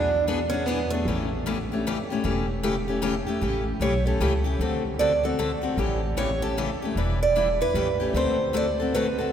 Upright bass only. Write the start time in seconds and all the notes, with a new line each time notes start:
Already playing: E2
1.05 A1
2.24 E1
3.42 A1
3.80 B1
4.20 C#2
4.59 D2
5.77 A1
6.95 E1
7.74 A1
8.13 D2